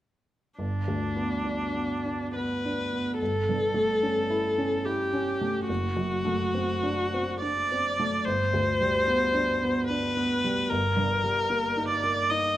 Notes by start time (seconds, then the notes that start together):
0.58 G1 D4
0.88 D2
1.16 B3
1.44 D4
1.74 B3
2.06 D4
2.36 B3 B4
2.65 D4
2.93 B3
3.19 G1 A4
3.49 G2
3.74 A3
4.03 C#4
4.30 E4
4.58 C#4
4.86 E4 G4
5.14 C#4
5.41 A3
5.68 F#1 F#4
5.97 F#2
6.25 A3
6.54 C4
6.83 D4
7.14 C4
7.41 D4 D5
7.72 C4
7.99 A3
8.25 G1 C5
8.54 D2
8.81 G3
9.08 B3
9.34 D4
9.62 B3
9.88 D4 B4
10.17 B3
10.44 G3
10.69 G1 A#4
10.97 G2
11.24 G3
11.50 A#3
11.77 D#4
11.88 D5
12.04 A#3
12.30 D#4 D#5